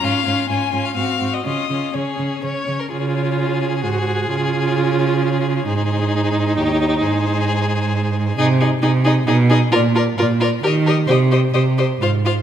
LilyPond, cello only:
\new Staff \with { instrumentName = "Cello" } { \clef bass \time 3/4 \key des \major \tempo 4 = 132 aes,8 aes,8 aes,8 aes,8 aes,8 aes,8 | des8 des8 des8 des8 des8 des8 | des2 aes,4 | des2. |
aes,2 ees,4 | aes,2. | \key c \minor c4 c4 ces4 | bes,4 bes,4 ees4 |
c4 c4 aes,4 | }